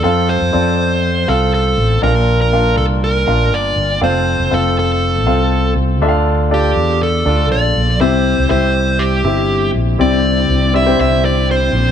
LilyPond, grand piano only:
<<
  \new Staff \with { instrumentName = "Grand piano" } { \time 4/4 \key f \major \tempo 4 = 120 <c' f' a' f''>4 <c' f' a' d''>4~ <c' f' a' d''>16 r16 <c' f' a' f''>4~ <c' f' a' f''>16 r16 | <d' f' bes' f''>4 <d' f' bes' f''>4~ <d' f' bes' f''>16 r16 <d' f' bes' f''>4~ <d' f' bes' f''>16 r16 | <c' f' a' f''>4 <c' f' a' f''>4~ <c' f' a' f''>16 r16 <c' f' a' f''>4~ <c' f' a' f''>16 r16 | <d' f' a' e'' f''>4 <d' f' a' d''>4~ <d' f' a' d''>16 r16 <d' f' a' d''>4~ <d' f' a' d''>16 r16 |
<c' e' g' e''>4 <c' e' g' e''>4~ <c' e' g' e''>16 r16 <c' e' g' e''>4~ <c' e' g' e''>16 r16 | <c' e' g' d''>4~ <c' e' g' d''>16 r16 <c' e' g' d''>16 <c' e' g' c''>4.~ <c' e' g' c''>16 r8 | }
  \new Staff \with { instrumentName = "Grand piano" } { \clef bass \time 4/4 \key f \major r1 | bes,4. r2 r8 | r1 | d4. r2 r8 |
c4. r2 r8 | c4. r2 r8 | }
>>